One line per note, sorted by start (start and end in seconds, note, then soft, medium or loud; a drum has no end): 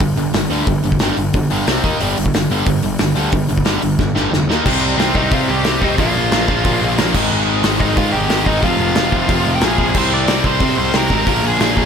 0.00 0.12 G1 medium
0.00 0.15 G2 medium
0.00 0.16 D3 medium
0.00 kick loud
0.00 open hi-hat medium
0.16 0.28 G1 medium
0.16 0.32 G2 medium
0.16 0.33 D3 medium
0.16 open hi-hat soft
0.34 0.45 G1 medium
0.34 0.49 G2 medium
0.34 0.49 D3 medium
0.34 snare loud
0.34 open hi-hat medium
0.50 0.61 D2 medium
0.50 0.66 G2 medium
0.50 0.66 D3 medium
0.50 0.67 G3 medium
0.50 open hi-hat medium
0.67 0.78 G1 medium
0.67 0.82 G2 medium
0.67 0.82 D3 medium
0.67 kick loud
0.67 open hi-hat medium
0.83 0.95 G1 medium
0.83 0.99 G2 medium
0.83 0.99 D3 medium
0.83 open hi-hat medium
0.92 kick medium
0.99 1.11 G1 medium
0.99 1.17 G2 loud
0.99 1.17 D3 medium
0.99 1.17 G3 medium
0.99 snare loud
0.99 open hi-hat medium
1.17 1.28 G1 medium
1.17 1.32 G2 medium
1.17 1.33 D3 medium
1.17 open hi-hat soft
1.33 1.45 G1 loud
1.33 1.49 G2 medium
1.33 1.49 D3 medium
1.33 kick loud
1.33 open hi-hat medium
1.50 1.61 G1 medium
1.50 1.66 G2 medium
1.50 1.66 D3 loud
1.50 1.66 G3 loud
1.50 open hi-hat medium
1.67 1.78 C2 medium
1.67 1.82 C3 loud
1.67 1.83 G3 loud
1.67 1.83 C4 loud
1.67 snare loud
1.67 open hi-hat medium
1.83 1.95 D#2 medium
1.83 1.99 D#3 medium
1.83 1.99 A#3 medium
1.83 1.99 D#4 medium
1.83 kick loud
1.83 open hi-hat medium
2.00 2.12 G1 medium
2.00 2.16 G2 medium
2.00 2.16 D3 medium
2.00 2.16 G3 loud
2.00 open hi-hat medium
2.17 2.29 G1 medium
2.17 2.32 G2 medium
2.17 2.32 D3 medium
2.17 open hi-hat medium
2.26 kick medium
2.34 2.45 G1 medium
2.34 2.49 G2 medium
2.34 2.49 D3 medium
2.34 snare loud
2.34 open hi-hat medium
2.50 2.61 G1 medium
2.50 2.65 G2 medium
2.50 2.66 D3 loud
2.50 2.66 G3 loud
2.50 open hi-hat medium
2.66 2.78 G1 medium
2.66 2.81 G2 medium
2.66 2.82 D3 medium
2.66 kick loud
2.66 open hi-hat medium
2.82 2.94 G1 medium
2.82 2.98 G2 medium
2.82 2.98 D3 medium
2.82 open hi-hat medium
2.99 3.12 G1 medium
2.99 3.14 G2 medium
2.99 3.14 D3 medium
2.99 snare loud
2.99 open hi-hat medium
3.15 3.28 D2 medium
3.15 3.31 G2 medium
3.15 3.31 D3 medium
3.15 3.31 G3 loud
3.15 open hi-hat medium
3.32 3.44 G1 medium
3.32 3.47 G2 medium
3.32 3.47 D3 medium
3.32 kick loud
3.32 open hi-hat medium
3.48 3.61 G1 medium
3.48 3.64 G2 medium
3.48 3.64 D3 medium
3.48 open hi-hat medium
3.58 kick medium
3.65 3.77 G1 medium
3.65 3.81 G2 medium
3.65 3.81 D3 medium
3.65 3.81 G3 loud
3.65 snare loud
3.65 open hi-hat medium
3.82 3.94 G1 medium
3.82 3.97 G2 medium
3.82 3.97 D3 medium
3.82 open hi-hat medium
3.99 4.10 G1 medium
3.99 4.14 G2 medium
3.99 4.14 D3 medium
3.99 kick loud
3.99 snare medium
4.15 4.27 G1 medium
4.15 4.31 G2 medium
4.15 4.31 D3 loud
4.15 4.31 G3 medium
4.15 snare medium
4.32 4.43 F1 medium
4.32 4.47 G2 medium
4.32 4.47 D3 medium
4.32 snare medium
4.47 4.59 D#2 medium
4.47 4.65 D#3 medium
4.47 4.65 A#3 medium
4.47 4.65 D#4 loud
4.47 snare medium
4.66 4.97 C2 medium
4.66 4.98 C3 loud
4.66 4.98 G3 loud
4.66 4.98 C4 loud
4.66 4.97 D#4 medium
4.66 4.98 G4 loud
4.66 kick loud
4.66 crash loud
4.98 5.30 C2 loud
4.98 5.15 C3 medium
4.98 5.15 G3 medium
4.98 5.15 C4 medium
4.98 5.14 D#4 medium
4.98 5.13 G4 loud
4.98 snare loud
4.98 open hi-hat medium
5.14 5.31 C3 medium
5.14 5.32 G3 medium
5.14 5.32 C4 medium
5.14 5.31 D#4 loud
5.14 5.31 D#4 medium
5.14 5.31 G4 loud
5.14 5.33 D#5 medium
5.14 kick medium
5.31 5.48 C3 medium
5.31 5.64 C3 medium
5.31 5.64 G3 loud
5.31 5.65 C4 medium
5.31 5.64 D#4 loud
5.31 5.38 F4 medium
5.31 5.65 G4 loud
5.31 5.39 F5 medium
5.31 kick loud
5.31 open hi-hat medium
5.49 5.65 C2 medium
5.49 5.79 G4 medium
5.49 5.82 G5 loud
5.64 5.81 C2 loud
5.64 5.82 C3 medium
5.64 5.81 G3 medium
5.64 5.81 C4 loud
5.64 5.81 D#4 medium
5.64 5.80 G4 medium
5.64 snare loud
5.64 open hi-hat medium
5.81 5.98 C2 medium
5.81 5.98 C3 medium
5.81 5.98 G3 medium
5.81 5.98 C4 loud
5.81 5.86 D#4 medium
5.81 5.97 D#4 medium
5.81 5.97 G4 medium
5.81 5.89 D#5 medium
5.81 kick medium
5.98 6.14 A#1 loud
5.98 6.30 A#2 medium
5.98 6.31 D3 loud
5.98 6.31 F3 loud
5.98 6.32 A#3 loud
5.98 6.32 D4 loud
5.98 6.94 F4 medium
5.98 6.95 F5 medium
5.98 kick loud
5.98 open hi-hat medium
6.16 6.31 A#1 loud
6.31 6.48 A#1 loud
6.31 6.48 A#2 medium
6.31 6.49 D3 medium
6.31 6.48 F3 medium
6.31 6.47 A#3 loud
6.31 6.48 D4 medium
6.31 snare loud
6.31 open hi-hat medium
6.48 6.64 A#1 medium
6.48 6.64 A#2 medium
6.48 6.65 D3 medium
6.48 6.64 F3 medium
6.48 6.64 A#3 loud
6.48 6.66 D4 loud
6.48 kick medium
6.65 6.81 A#1 loud
6.65 6.97 A#2 loud
6.65 6.97 D3 loud
6.65 6.97 F3 loud
6.65 6.97 A#3 loud
6.65 6.98 D4 loud
6.65 kick loud
6.65 open hi-hat medium
6.82 6.97 A#1 medium
6.98 7.14 A#1 loud
6.98 7.13 A#2 loud
6.98 7.14 D3 medium
6.98 7.14 F3 loud
6.98 7.14 A#3 loud
6.98 7.14 D4 medium
6.98 snare loud
6.98 open hi-hat medium
7.14 7.30 G#1 loud
7.14 7.31 G#2 loud
7.14 7.31 D#3 loud
7.14 7.31 G#3 loud
7.14 7.31 C4 loud
7.14 7.30 D#4 loud
7.14 kick loud
7.14 crash loud
7.31 7.63 G#1 loud
7.31 7.64 G#2 medium
7.31 7.64 D#3 loud
7.31 7.64 G#3 loud
7.31 7.64 C4 medium
7.31 7.63 D#4 loud
7.63 7.96 G#1 loud
7.63 7.79 G#2 medium
7.63 7.80 D#3 medium
7.63 7.81 G#3 loud
7.63 7.81 C4 medium
7.63 7.81 D#4 medium
7.63 snare loud
7.63 open hi-hat medium
7.80 7.97 G#2 medium
7.80 7.96 D#3 loud
7.80 7.95 G#3 medium
7.80 7.97 C4 loud
7.80 7.96 D#4 medium
7.80 7.96 D#4 loud
7.80 7.96 D#5 medium
7.80 kick medium
7.96 8.13 G#2 loud
7.96 8.30 G#2 medium
7.96 8.29 D#3 medium
7.96 8.28 G#3 loud
7.96 8.30 C4 loud
7.96 8.28 D#4 loud
7.96 8.12 F4 medium
7.96 8.13 F5 medium
7.96 kick loud
7.96 open hi-hat medium
8.12 8.28 G#1 medium
8.12 8.44 G4 medium
8.12 8.47 G5 medium
8.29 8.45 G#1 loud
8.29 8.46 G#2 medium
8.29 8.46 D#3 loud
8.29 8.46 G#3 loud
8.29 8.46 C4 loud
8.29 8.46 D#4 loud
8.29 snare loud
8.29 open hi-hat medium
8.46 8.62 G#1 medium
8.46 8.62 G#2 medium
8.46 8.62 D#3 medium
8.46 8.63 G#3 loud
8.46 8.62 C4 loud
8.46 8.61 D#4 medium
8.46 8.62 D#4 loud
8.46 8.64 D#5 medium
8.46 kick medium
8.62 8.78 F1 loud
8.62 8.95 F2 medium
8.62 8.95 C3 loud
8.62 8.96 F3 loud
8.62 8.95 G#3 loud
8.62 8.96 C4 loud
8.62 9.51 F4 medium
8.62 8.96 F4 medium
8.62 9.55 F5 medium
8.62 kick loud
8.62 open hi-hat medium
8.78 8.95 F1 medium
8.95 9.12 F1 medium
8.95 9.13 F2 medium
8.95 9.12 C3 medium
8.95 9.12 F3 loud
8.95 9.11 G#3 medium
8.95 9.12 C4 medium
8.95 9.10 F4 loud
8.95 snare loud
8.95 open hi-hat medium
9.12 9.28 F1 loud
9.12 9.29 F2 medium
9.12 9.30 C3 medium
9.12 9.30 F3 loud
9.12 9.27 G#3 medium
9.12 9.28 C4 loud
9.12 9.29 F4 loud
9.12 kick medium
9.29 9.45 F1 medium
9.29 9.60 F2 medium
9.29 9.61 C3 medium
9.29 9.61 F3 loud
9.29 9.61 G#3 loud
9.29 9.61 C4 loud
9.29 9.62 F4 loud
9.29 kick loud
9.29 open hi-hat medium
9.47 9.62 F1 medium
9.55 9.62 G5 medium
9.61 9.94 A#1 medium
9.61 9.78 F2 medium
9.61 9.78 C3 medium
9.61 9.78 F3 loud
9.61 9.78 G#3 medium
9.61 9.77 C4 medium
9.61 9.77 F4 medium
9.61 9.94 G#4 medium
9.61 snare loud
9.61 open hi-hat medium
9.65 9.98 G#5 medium
9.78 9.95 F2 medium
9.78 9.93 C3 medium
9.78 9.94 F3 medium
9.78 9.94 G#3 medium
9.78 9.94 C4 medium
9.78 9.94 F4 loud
9.78 kick medium
9.94 10.27 C2 loud
9.94 10.27 C3 loud
9.94 10.27 G3 loud
9.94 10.27 C4 loud
9.94 10.27 D#4 loud
9.94 10.12 C5 medium
9.94 10.14 C6 medium
9.94 kick loud
9.94 crash loud
10.13 10.43 D5 medium
10.13 10.46 D6 loud
10.28 10.60 C2 medium
10.28 10.44 C3 medium
10.28 10.44 G3 medium
10.28 10.43 C4 loud
10.28 10.42 D#4 loud
10.28 snare loud
10.28 open hi-hat medium
10.44 10.59 C3 medium
10.44 10.60 G3 medium
10.44 10.60 C4 loud
10.44 10.60 D#4 loud
10.44 10.76 C5 medium
10.44 10.77 C6 loud
10.44 kick medium
10.60 10.92 C3 medium
10.60 10.77 C3 loud
10.60 10.92 G3 medium
10.60 10.93 C4 loud
10.60 10.93 D#4 loud
10.60 kick loud
10.60 open hi-hat medium
10.77 10.93 C2 medium
10.77 10.93 C5 medium
10.77 10.93 C6 loud
10.93 11.10 C2 loud
10.93 11.10 C3 medium
10.93 11.10 G3 medium
10.93 11.09 C4 loud
10.93 11.09 D#4 loud
10.93 11.26 A#4 medium
10.93 11.27 A#5 medium
10.93 snare loud
10.93 open hi-hat medium
11.10 11.27 G#1 loud
11.10 11.26 C3 medium
11.10 11.26 G3 medium
11.10 11.26 C4 loud
11.10 11.26 D#4 medium
11.10 kick medium
11.27 11.43 A#1 medium
11.27 11.58 A#2 loud
11.27 11.58 D3 medium
11.27 11.58 F3 loud
11.27 11.58 A#3 loud
11.27 11.59 D4 medium
11.27 11.43 A#4 medium
11.27 11.45 A#5 loud
11.27 kick loud
11.27 open hi-hat medium
11.43 11.59 A#1 medium
11.43 11.86 G#4 medium
11.43 11.86 G#5 medium
11.59 11.76 A#1 medium
11.59 11.76 A#2 medium
11.59 11.75 D3 medium
11.59 11.76 F3 medium
11.59 11.75 A#3 medium
11.59 11.74 D4 medium
11.59 snare loud
11.59 open hi-hat medium
11.76 11.86 A#1 medium
11.76 11.86 A#2 medium
11.76 11.86 D3 medium
11.76 11.86 F3 medium
11.76 11.86 A#3 loud
11.76 11.86 D4 loud
11.76 kick medium